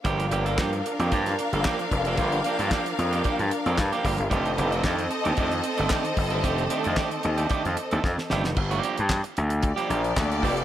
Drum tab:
CC |----------------|----------------|----------------|----------------|
HH |xxxx-xxxxxxx-xxx|xxxx-xxxxxxx-xox|xxxx-xxxxxxx-xox|xxxx-xxxxxxx----|
CP |----x-------x---|----x-------x---|----x-------x---|----x-----------|
SD |----o----o--o---|----o-------o---|----o-------o---|----o-------oooo|
BD |o---o---o---o-o-|o---o---o---o-o-|o---o---o---o-o-|o---o---o---o---|

CC |x---------------|
HH |-xxx-xxxxxxx-xox|
CP |----x-------x---|
SD |----o-------o---|
BD |o---o---o---o-o-|